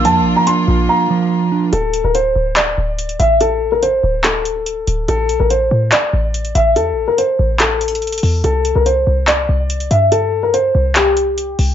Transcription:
<<
  \new Staff \with { instrumentName = "Grand piano" } { \time 4/4 \key d \minor \tempo 4 = 143 a''8. bes''16 c'''4 bes''2 | a'8. bes'16 c''4 d''4. e''8 | a'8. bes'16 c''4 a'2 | a'8. bes'16 c''4 d''4. e''8 |
a'8. bes'16 c''4 a'2 | a'8. bes'16 c''4 d''4. e''8 | a'8. bes'16 c''4 g'2 | }
  \new Staff \with { instrumentName = "Clean electric guitar" } { \time 4/4 \key d \minor <f d' f''>4 d'8 f'8 f''8 f4 d'8 | r1 | r1 | r1 |
r1 | r1 | r1 | }
  \new Staff \with { instrumentName = "String section" } { \time 4/4 \key d \minor <bes d' f'>1 | r1 | r1 | r1 |
r1 | r1 | r1 | }
  \new Staff \with { instrumentName = "808-style bass" } { \clef bass \time 4/4 \key d \minor f,16. bes,,16. r8. bes,,8 r2 | d,,8. d,,8. d,,4 d,,4 a,,8~ | a,,4. d,,2 d,,8 | a,,8 bes,,16 a,,8. a,8 r8 a,,4 a,,8 |
e,16. a,,16. r8. a,,2 e,8 | c,8. c,8. c,4 c,4 g,8~ | g,4. c,2 c,8 | }
  \new DrumStaff \with { instrumentName = "Drums" } \drummode { \time 4/4 hh4 hh4 r4 r4 | hh8 hh8 hh4 <hc hh>4 hh16 hh16 hh8 | hh4 hh4 <hc hh>8 hh8 hh8 hh8 | hh8 hh8 hh4 <hc hh>4 hh16 hh16 hh8 |
hh4 hh4 \tuplet 3/2 { <hc hh>16 r16 r16 hh16 hh16 hh16 } hh32 hh32 hh32 hh32 hho8 | hh8 hh8 hh4 <hc hh>4 hh16 hh16 hh8 | hh4 hh4 <hc hh>8 hh8 hh8 hho8 | }
>>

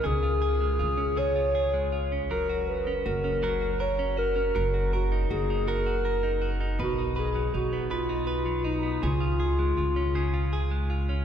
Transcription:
<<
  \new Staff \with { instrumentName = "Clarinet" } { \time 6/8 \key cis \mixolydian \tempo 4. = 53 gis'4. cis''4 r8 | ais'8 b'8 ais'4 cis''8 ais'8~ | ais'8 fis'8 gis'8 ais'4 r8 | fis'8 gis'8 fis'8 eis'4 dis'8 |
eis'2~ eis'8 r8 | }
  \new Staff \with { instrumentName = "Clean electric guitar" } { \time 6/8 \key cis \mixolydian <cis gis'>16 eis'16 gis'16 gis16 eis'16 cis'16 <cis gis'>16 eis'16 gis'16 gis16 eis'16 cis'16 | <fis ais'>16 fis'8 cis'16 fis'16 cis'16 <fis ais'>16 fis'16 ais'16 cis'16 fis'16 cis'16 | <fis ais'>16 fis'16 ais'16 dis'16 fis'16 dis'16 <fis ais'>16 fis'16 ais'16 dis'16 fis'16 dis'16 | <b, b'>16 dis'16 b'16 fis16 dis'16 b16 <b, b'>16 dis'16 b'16 fis16 dis'16 b16 |
<cis gis'>16 eis'16 gis'16 gis16 eis'16 cis'16 <cis gis'>16 eis'16 gis'16 gis16 eis'16 cis'16 | }
  \new Staff \with { instrumentName = "Upright bass" } { \clef bass \time 6/8 \key cis \mixolydian cis,4 cis,2 | fis,,4 fis,,2 | fis,,4 fis,,2 | b,,4 b,,2 |
cis,4 cis,2 | }
>>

